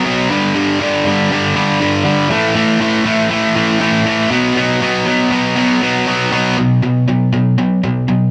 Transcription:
0.05 B2 F#3 B3
0.30 G2 D3 G3
0.55 G2 D3 G3
0.80 G2 D3 G3
1.05 G2 D3 G3
1.31 G2 D3 G3
1.55 G2 D3 G3
1.80 G2 D3 G3
2.04 G2 D3 G3
2.30 A2 E3 A3
2.55 A2 E3 A3
2.80 A2 E3 A3
3.05 A2 E3 A3
3.30 A2 E3 A3
3.56 A2 E3 A3
3.80 A2 E3 A3
4.05 A2 E3 A3
4.30 B2 F#3 B3
4.56 B2 F#3 B3
4.81 B2 F#3 B3
5.06 B2 F#3 B3
5.31 B2 F#3 B3
5.56 B2 F#3 B3
5.82 B2 F#3 B3
6.07 B2 F#3 B3
6.32 B2 F#3 B3
6.58 B2 F#3
6.82 B2 F#3
7.08 B2 F#3
7.33 B2 F#3
7.58 B2 F#3
7.84 B2 F#3
8.08 B2 F#3

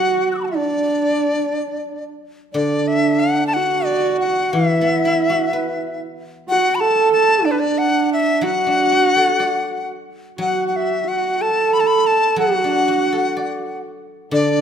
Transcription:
Already playing: F#3 F#4 F#5
0.32 E6 F#6
0.36 B5 D6
0.43 F#5 A5
0.51 E5
0.55 D4 D5
2.53 D3 D4 D5
2.88 E5
3.20 F#5
3.47 A5
3.54 F#4 F#5
3.85 D5
4.20 F#5
4.53 E3 E4 E5
4.81 B3
5.05 E4
5.30 F#4
5.53 B4
6.48 F#4 F#5
6.75 B5
6.80 A4 A5
7.12 A5
7.45 D4 D5
7.51 B4
7.60 D5
7.78 F#5
8.13 E5
8.41 F#3 F#4 F#5
8.67 D4
8.92 F#4
9.16 A4
9.40 D5
10.38 F#3 F#4 F#5
10.68 F#5
10.76 E5
11.07 F#4 F#5
11.41 A4 A5
11.73 B5
11.80 A5
11.87 B5
12.07 A5
12.36 F#3 F#4 F#5
12.64 D4
12.88 F#4
13.13 A4
13.37 D5
14.31 D3 D4 D5

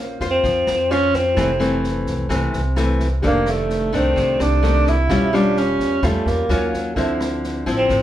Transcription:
Already playing: A#1 A#3 C4 C#4 F4 A#4 C5
0.20 F2 F4 C5, kick, snare
0.31 C4
0.44 F2 F3, kick, snare
0.67 F2, cross-stick, snare
0.91 C#4 F4 C5, snare
1.14 C4, kick, snare
1.35 F1 F2 E3 A3 C4 E4 G4 A4, kick, cross-stick, snare
1.40 C5
1.59 E3 A3 C4, snare
1.84 snare
2.06 C2, kick, snare
2.29 C2 C3 E3 A3 C4, kick, cross-stick, snare
2.53 C2, snare
2.76 E3 A3 C4, cross-stick, snare
2.99 kick, snare
3.22 F1 F2 D#3 A3 D4 G4 A4 D5, kick, snare
3.27 A#3
3.46 A3, cross-stick, snare
3.70 snare
3.93 C2 D#3 A3 C4 D4, kick, snare
4.16 C2 C3, kick, snare
4.38 C2 D4 G4 A4 D5, cross-stick, snare
4.63 D#3 A3 D4, snare
4.86 E4, kick, snare
5.07 E1 G3 C#4 F4 G4 C#5 F5, kick, cross-stick, snare
5.13 E5
5.33 G3 C#4 D4 F4, snare
5.57 C#4, snare
5.79 E2, kick, snare
6.03 E2 G3 A3 C#4 F4, kick, cross-stick, snare
6.26 E2 A#3, snare
6.49 D#2 F#3 C#4 F4 A#4 C#5 F5, cross-stick, snare
6.73 kick, snare
6.94 D2 D3 F3 C4 E4 A4 C5, kick, snare
6.99 E5
7.20 cross-stick, snare
7.44 snare
7.66 A1 F3 C4 E4, kick, snare
7.77 C4
7.89 A1 A2, kick, snare

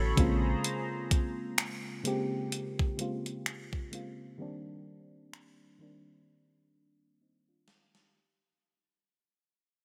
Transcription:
Already playing: D3 A3 B3 C#4 E4 F#4 A4 C#5 B5
0.00 A1
0.16 A#1 C#3 G#3 A#3 C4 F4 G#4 C5 A#5, kick, closed hi-hat
0.64 closed hi-hat
1.11 kick, closed hi-hat
1.58 finger snap, closed hi-hat
2.04 C#3 G#3 A#3 C4 G4, closed hi-hat
2.52 closed hi-hat
2.79 kick
2.97 C#3 G#3 A#3 C4 F4, closed hi-hat
3.26 closed hi-hat
3.46 finger snap, closed hi-hat
3.73 kick
3.91 C#3 G#3 A#3 C4 F4, closed hi-hat
4.38 D#3 G3 A#3 C4 D4
5.33 finger snap
5.79 D#3 G3 A#3 C4 D4
7.21 C4 D#4
7.49 D4 F4
7.68 snare
7.95 D#4 G4, snare

